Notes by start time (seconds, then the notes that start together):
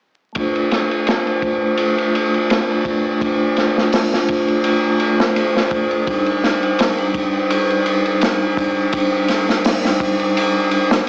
0.33 A3 D4, kick, ride
0.38 F4 C5
0.55 ride
0.71 snare, ride
0.91 ride
1.07 snare, ride
1.26 A3 D4 F4 C5, ride
1.42 kick, ride
1.61 A3 D4 F4 C5
1.78 ride
1.98 ride
2.11 A3 D4, ride
2.16 F4 C5
2.34 ride
2.50 snare, ride
2.85 kick, ride
3.19 A3 D4, kick, ride
3.23 F4 C5
3.57 snare, ride
3.78 snare
3.92 snare, open hi-hat
4.11 A3 D4 F4 C5, snare
4.28 kick, ride
4.47 A3 D4 F4 C5, ride
4.64 ride
4.97 A3 D4, ride
5.02 F4 C5
5.20 snare
5.36 ride
5.57 snare
5.71 kick, ride
5.91 ride
6.05 G3 D4, kick, ride
6.09 D#4 C5
6.26 ride
6.44 snare, ride
6.63 ride
6.79 snare, ride
6.97 G3 D4 D#4 C5, ride
7.14 kick, ride
7.33 G3 D4 D#4 C5
7.50 ride
7.70 ride
7.83 G3 D4, ride
7.88 D#4 C5
8.05 ride
8.21 snare, ride
8.57 kick, ride
8.90 G3 D4, kick, ride
8.95 D#4 C5
9.28 snare, ride
9.49 snare
9.64 snare, open hi-hat
9.83 G3 D4 D#4 C5, snare
10.00 kick, ride
10.19 G3 D4 D#4 C5, ride
10.37 ride
10.71 G3 D4 D#4 C5, ride
10.91 snare